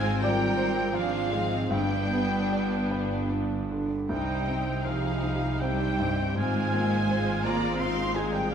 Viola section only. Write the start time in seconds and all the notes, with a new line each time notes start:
Already playing: C4 F4
0.22 C4
0.96 D4
1.34 C4
1.73 B3 D4
4.11 C4 D#4
4.49 D#4
4.86 G4
5.62 D4 G4
6.02 C4
6.39 C4 F4
6.74 A#3
7.10 G#3 F4
7.81 D#4
8.50 C4 D4